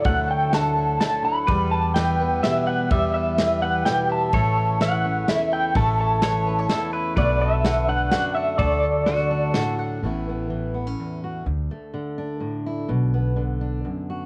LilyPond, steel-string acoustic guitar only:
\new Staff \with { instrumentName = "Steel-string acoustic guitar" } { \clef bass \time 3/4 \key d \major \tempo 4 = 126 << { a4. e'4. | g4. b8 g'4 | g4. b8 g'4 | a4. cis'8 e'4 |
a4. cis'8 e'4 | a4. d'8 fis'4 | a4. d'8 fis'4 | <e b cis' e'>8 b4 b16 cis'8. fis'8 |
r8 a4 d'4 e'8 | r8 b4 d'4 fis'8 | } \\ { <d, d>4 d4. d,8 | e,4 e4 b,4 | e,4 e4 b,4 | a,4 e4 e,4 |
a,4 e4 e,4 | b,4 d4 fis,4 | d,4 d4 a,4 | a,4 e4 e,4 |
d,4 d4 a,4 | b,4 d4 fis,4 | } >> }